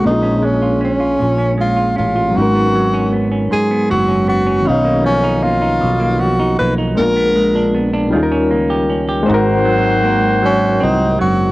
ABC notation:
X:1
M:6/8
L:1/16
Q:3/8=52
K:Bbphr
V:1 name="Horn section"
z12 | z12 | z12 | z12 |
[K:Abmix] [E,Gc]8- [E,Gc]2 z2 |]
V:2 name="Tenor saxophone"
E2 D2 D4 F2 F2 | G4 z2 A2 G2 G2 | ^D2 ^C2 ^E4 ^F2 =B2 | B4 z8 |
[K:Abmix] z6 D2 E2 G2 |]
V:3 name="Reed electric piano"
[A,B,DFA]12 | [G,CDEB]12 | [^D,^C^D^c^e]12 | [A,C=DFB]6 [=G,_DEFAB]6 |
[K:Abmix] [A,EGBc]12 |]
V:4 name="Clean electric guitar"
B,, D A, F D F B,, D A, F D F | A,, C G, D C D A,, C G, D C D | =B,, ^A, ^E, ^D A, D B,, A, E, D A, D | B,, C A, =D C D E, _D B, =G D G |
[K:Abmix] A,,2 G,2 B,2 G,2 C2 G,2 |]
V:5 name="Fretless electric bass" clef=bass
B,,,6 B,,,4 =A,,,2 | A,,,6 z2 G,,,4 | =B,,,6 B,,,4 B,,,2 | B,,,6 E,,2 D,,4 |
[K:Abmix] A,,,8 C,,2 G,,,2 |]